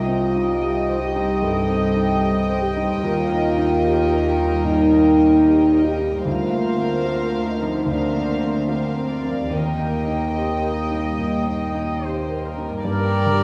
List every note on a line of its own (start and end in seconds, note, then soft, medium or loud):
0.00 1.39 C2 soft
0.00 2.99 C2 soft
0.00 3.07 C3 soft
0.00 0.34 G3 soft
0.00 0.98 F4 medium
0.00 2.99 D#5 soft
0.00 6.22 D#5 medium
0.00 6.22 G5 medium
0.07 0.50 C4 soft
0.07 1.68 D#4 soft
0.35 0.88 G3 soft
0.35 0.78 D#4 soft
0.61 1.07 A3 soft
0.61 1.05 G4 soft
0.89 1.42 G3 soft
0.89 1.32 C5 soft
1.03 1.43 G4 medium
1.15 2.76 C4 soft
1.15 1.58 D#4 soft
1.42 1.85 G2 soft
1.42 1.96 G3 soft
1.42 2.63 A4 medium
1.69 2.12 C4 soft
1.69 3.57 D#4 soft
1.96 2.49 G3 soft
1.96 2.39 D#4 soft
2.22 2.68 A3 soft
2.22 2.65 G4 soft
2.50 4.39 G3 soft
2.50 2.93 C5 soft
2.61 3.03 G4 medium
2.76 3.07 C4 soft
2.76 3.03 D#4 soft
3.03 4.61 D#2 medium
3.03 6.26 D#2 medium
3.03 6.29 D#3 soft
3.03 4.62 F4 medium
3.03 6.24 A#4 medium
3.30 3.73 A#3 soft
3.30 4.92 A#4 soft
3.58 4.00 D#4 soft
3.58 4.11 D#4 soft
3.84 4.31 F4 soft
3.84 4.27 G4 soft
4.11 4.65 D#4 soft
4.11 4.54 A#4 soft
4.38 5.99 G3 soft
4.38 4.81 D#4 soft
4.65 5.08 A#2 soft
4.65 5.85 D#4 medium
4.65 5.19 D#4 soft
4.91 5.34 A#3 soft
4.91 8.83 A#4 soft
5.18 5.61 D#4 soft
5.18 5.72 D#4 soft
5.45 5.91 F4 soft
5.45 5.88 G4 soft
5.71 6.29 D#4 soft
5.71 6.14 A#4 soft
5.85 6.14 G4 medium
5.98 6.30 G3 soft
5.98 6.25 D#4 soft
6.25 9.48 D2 medium
6.25 7.84 D2 soft
6.25 7.87 D3 soft
6.25 7.45 F4 medium
6.25 7.83 A#4 medium
6.25 7.84 C5 medium
6.25 7.84 F5 medium
6.51 6.95 A#3 soft
6.51 10.44 C5 soft
6.78 7.22 C4 soft
6.78 7.34 C4 soft
7.05 7.53 D4 soft
7.05 7.49 F4 soft
7.33 8.41 C4 soft
7.33 7.76 A#4 soft
7.47 7.88 D#4 medium
7.60 9.24 F3 soft
7.60 8.04 C4 soft
7.86 9.48 D2 soft
7.86 9.56 D3 soft
7.86 8.70 D4 medium
7.86 8.67 A#4 soft
7.86 8.67 C5 soft
7.86 8.68 F5 soft
8.13 8.58 A#3 soft
8.13 12.06 F4 soft
8.40 8.85 C4 soft
8.40 8.95 C4 soft
8.68 9.53 C4 medium
8.68 9.16 D4 soft
8.68 9.13 F4 soft
8.68 9.50 A#4 soft
8.68 9.09 C5 soft
8.68 9.52 F5 soft
8.95 9.56 C4 soft
8.95 9.40 A#4 soft
9.10 9.51 D5 soft
9.24 9.56 F3 soft
9.24 9.52 C4 soft
9.51 11.16 D#2 soft
9.51 12.63 D#2 soft
9.51 12.90 D#3 soft
9.51 11.99 A#3 medium
9.51 10.26 A#4 soft
9.51 12.67 D#5 soft
9.51 12.67 G5 soft
9.78 10.24 A#3 soft
9.78 13.44 G4 soft
10.07 10.62 A#3 soft
10.07 10.53 D#4 soft
10.34 10.84 C4 soft
10.34 10.80 G4 soft
10.34 11.59 D#5 soft
10.62 11.19 A#3 soft
10.62 11.08 A#4 soft
10.90 12.58 G3 soft
10.90 11.36 D#4 soft
11.18 11.64 A#2 soft
11.18 11.74 A#3 soft
11.47 11.92 A#3 soft
11.62 12.04 D#5 soft
11.74 12.30 A#3 soft
11.74 12.20 D#4 soft
12.03 12.51 C4 soft
12.03 12.48 G4 soft
12.03 12.45 C5 soft
12.29 12.76 A#3 soft
12.29 12.75 A#4 soft
12.45 12.87 A#4 soft
12.57 12.72 G3 soft
12.57 12.86 D#4 soft
12.69 13.44 G2 soft
12.73 13.44 G3 soft
12.78 13.44 A#3 soft
12.82 13.44 G2 soft
12.82 13.44 D5 medium
12.82 13.44 A5 soft
12.86 13.44 G2 soft
12.86 13.44 G3 soft
12.86 13.25 A#3 soft
12.86 13.44 G4 soft
12.86 13.25 A#4 medium
12.86 13.44 A#4 soft
12.86 13.44 A#4 medium
13.26 13.44 D3 soft
13.26 13.44 A#3 soft
13.26 13.44 G4 medium